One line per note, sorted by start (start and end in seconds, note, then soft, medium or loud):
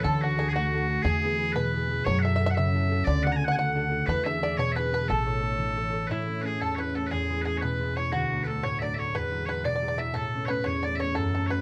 0.00 1.03 D2 medium
0.00 0.55 A3 medium
0.00 0.10 C#4 medium
0.00 0.23 F#4 soft
0.00 0.22 A4 soft
0.00 0.21 A4 medium
0.00 1.93 B4 soft
0.00 0.10 C#5 medium
0.04 1.10 D3 medium
0.04 0.21 A4 medium
0.21 0.37 D4 medium
0.21 0.49 F#4 medium
0.21 0.38 F#4 soft
0.21 0.38 F#4 medium
0.21 0.38 A4 medium
0.38 0.73 D4 soft
0.38 0.73 F#4 soft
0.38 0.53 G#4 medium
0.38 0.74 A4 medium
0.49 0.53 G#4 medium
0.53 1.31 A3 medium
0.53 1.03 F#4 medium
0.53 1.02 F#4 medium
0.73 0.89 D4 medium
0.73 0.90 F#4 medium
0.73 0.89 A4 medium
0.89 2.62 D4 soft
0.89 2.24 F#4 soft
0.89 1.31 A4 medium
1.03 2.04 E2 medium
1.03 1.52 G#4 medium
1.07 1.60 E3 medium
1.24 1.38 B3 medium
1.24 1.39 E4 soft
1.24 1.39 G#4 medium
1.38 1.71 B3 soft
1.38 1.73 E4 soft
1.38 1.76 G#4 soft
1.52 2.11 B2 medium
1.52 2.05 B4 medium
1.52 1.91 B4 medium
1.71 1.88 B3 medium
1.71 1.89 E4 soft
1.76 1.89 G#4 medium
1.89 4.99 B3 soft
1.89 2.24 E4 soft
1.89 2.31 G#4 medium
2.05 3.05 F#2 medium
2.05 2.61 F#3 medium
2.05 2.19 C#5 loud
2.05 2.23 C#5 medium
2.19 2.50 E5 loud
2.19 2.22 F#5 loud
2.24 2.39 E4 medium
2.24 2.40 F#4 soft
2.24 2.40 A4 medium
2.24 2.34 E5 medium
2.36 2.73 E4 medium
2.36 2.45 E5 medium
2.40 2.74 F#4 soft
2.40 2.75 A4 medium
2.46 2.51 E5 loud
2.46 2.54 F#5 loud
2.51 3.04 E5 loud
2.51 2.57 F#5 medium
2.56 3.12 C#3 medium
2.56 3.09 E5 medium
2.74 2.90 E4 medium
2.74 2.90 F#4 soft
2.74 2.91 A4 medium
2.90 4.26 E4 soft
2.90 3.25 F#4 soft
2.90 3.26 A4 medium
3.04 4.06 D2 medium
3.04 4.13 D3 medium
3.04 3.23 D5 loud
3.04 3.24 D5 loud
3.23 3.40 D4 soft
3.23 3.41 F#4 soft
3.23 3.41 A4 medium
3.23 3.32 F#5 loud
3.23 3.36 F#5 medium
3.32 3.36 A#5 medium
3.36 3.44 G#5 medium
3.41 3.74 D4 soft
3.41 3.75 F#4 medium
3.41 3.76 A4 medium
3.41 3.52 F#5 loud
3.48 3.57 F#5 loud
3.48 3.55 G#5 loud
3.55 4.32 A3 medium
3.55 4.06 F#5 loud
3.55 4.05 F#5 medium
3.75 3.90 D4 medium
3.75 3.91 F#4 medium
3.75 3.91 A4 medium
3.90 4.25 D4 soft
3.90 6.35 F#4 soft
3.90 4.32 A4 soft
4.06 5.07 E2 medium
4.06 4.64 E3 medium
4.06 4.24 B4 loud
4.06 4.26 B4 medium
4.24 4.40 D4 medium
4.24 4.41 E4 soft
4.24 4.41 G#4 medium
4.24 4.57 E5 loud
4.24 4.43 E5 medium
4.40 4.76 D4 soft
4.40 4.76 E4 soft
4.40 4.77 G#4 medium
4.40 4.58 D5 medium
4.57 5.14 B2 medium
4.57 4.72 C#5 loud
4.57 4.76 C#5 medium
4.72 5.08 B4 loud
4.72 4.76 E5 loud
4.76 4.92 D4 medium
4.76 4.92 E4 soft
4.76 4.93 G#4 medium
4.76 4.93 B4 medium
4.92 5.33 D4 soft
4.92 5.25 E4 soft
4.92 5.14 G#4 medium
4.92 5.09 B4 medium
5.08 6.08 A1 medium
5.08 6.26 A3 medium
5.08 6.07 A4 loud
5.08 5.74 A4 medium
5.26 5.41 E4 medium
5.26 5.41 A4 medium
5.26 5.42 C#5 medium
5.41 5.76 E4 soft
5.41 5.77 A4 soft
5.41 5.77 C#5 medium
5.57 6.15 E3 medium
5.76 5.92 E4 medium
5.76 5.92 A4 soft
5.76 5.93 C#5 medium
5.92 6.27 E4 soft
5.92 7.35 A4 soft
5.92 7.84 C#5 medium
6.07 6.66 A2 medium
6.07 6.63 E4 medium
6.07 6.42 E4 medium
6.07 6.11 B4 medium
6.26 6.41 A3 soft
6.26 6.43 C#4 soft
6.26 6.45 E4 medium
6.41 6.78 A3 soft
6.41 6.79 C#4 soft
6.41 6.46 B4 medium
6.45 6.79 E4 soft
6.45 6.61 G#4 medium
6.60 7.10 E2 medium
6.60 6.75 A4 medium
6.60 6.78 A4 medium
6.75 6.95 A3 soft
6.75 6.95 C#4 soft
6.75 6.94 B4 medium
6.75 6.80 C#5 medium
6.80 6.95 E4 medium
6.80 6.96 B4 medium
6.95 7.35 A3 soft
6.95 8.18 C#4 soft
6.95 7.30 E4 soft
6.95 7.10 A4 medium
6.95 7.07 A4 medium
7.07 7.11 B4 medium
7.11 8.18 E2 medium
7.11 7.41 G#4 medium
7.11 7.44 G#4 medium
7.29 7.45 G#3 medium
7.29 7.46 B3 soft
7.29 7.47 E4 medium
7.41 7.78 G#3 soft
7.41 7.58 G#4 medium
7.41 7.62 G#4 medium
7.41 7.45 B4 medium
7.46 7.80 B3 soft
7.46 7.82 E4 soft
7.58 7.96 B4 medium
7.58 7.61 C#5 medium
7.62 8.18 B2 medium
7.62 7.94 B4 medium
7.78 7.96 G#3 medium
7.78 7.96 B3 soft
7.83 7.97 E4 medium
7.96 8.18 G#3 soft
7.96 10.34 B3 soft
7.96 9.31 E4 soft
7.96 8.12 C#5 medium
8.12 9.19 D2 medium
8.12 8.44 F#4 medium
8.12 8.65 F#4 medium
8.30 8.46 F#3 soft
8.30 8.47 A3 soft
8.30 8.48 D4 medium
8.44 8.80 F#3 soft
8.44 8.81 A3 soft
8.44 8.64 A4 medium
8.44 8.47 B4 medium
8.48 8.82 D4 soft
8.63 9.19 A2 medium
8.63 8.80 C#5 medium
8.63 8.79 C#5 medium
8.79 8.96 F#3 soft
8.79 8.98 A3 soft
8.79 8.98 D4 medium
8.79 9.14 D5 medium
8.79 8.83 E5 medium
8.83 8.94 D5 medium
8.94 9.19 F#3 soft
8.94 9.37 A3 soft
8.94 8.98 E5 medium
8.98 10.41 D4 soft
8.98 9.16 C#5 medium
9.14 10.20 E2 medium
9.14 9.47 B4 medium
9.14 9.46 B4 medium
9.30 9.46 F#3 soft
9.30 9.47 G#3 soft
9.30 9.48 E4 medium
9.46 9.81 F#3 soft
9.46 9.81 G#3 soft
9.46 9.82 E4 soft
9.46 9.65 B4 medium
9.46 9.49 C#5 medium
9.64 10.20 B2 medium
9.64 9.99 D5 medium
9.64 9.74 D5 medium
9.76 9.87 D5 medium
9.82 9.96 F#3 medium
9.82 9.97 G#3 soft
9.82 9.98 E4 medium
9.88 9.98 D5 medium
9.98 10.20 F#3 soft
9.98 10.20 G#3 soft
9.98 11.62 E4 soft
9.98 10.15 E5 medium
9.98 10.15 E5 loud
10.14 10.71 A2 medium
10.14 10.47 A4 medium
10.14 10.46 A4 medium
10.34 10.48 A3 soft
10.34 10.49 B3 soft
10.34 10.49 C#4 medium
10.46 10.84 A3 soft
10.46 10.85 C#4 medium
10.46 10.66 B4 medium
10.46 10.50 C#5 medium
10.50 10.84 B3 soft
10.50 10.66 B4 medium
10.64 11.21 E2 medium
10.64 10.82 C#5 medium
10.64 10.84 C#5 medium
10.83 11.00 A3 medium
10.83 11.00 B3 soft
10.83 11.01 C#4 medium
10.83 10.98 D5 medium
10.83 10.95 D5 medium
10.95 11.00 E5 medium
11.00 11.35 A3 soft
11.00 11.62 B3 soft
11.00 11.37 C#4 medium
11.00 11.15 C#5 medium
11.00 11.16 C#5 medium
11.15 11.62 F#2 medium
11.15 11.33 A4 medium
11.15 11.46 A4 medium
11.33 11.50 F#3 medium
11.33 11.51 A3 soft
11.33 11.50 A4 medium
11.37 11.52 C#4 medium
11.46 11.62 B4 medium
11.46 11.51 C#5 medium
11.51 11.62 F#3 soft
11.51 11.62 A3 soft
11.51 11.62 C#4 soft
11.51 11.62 B4 medium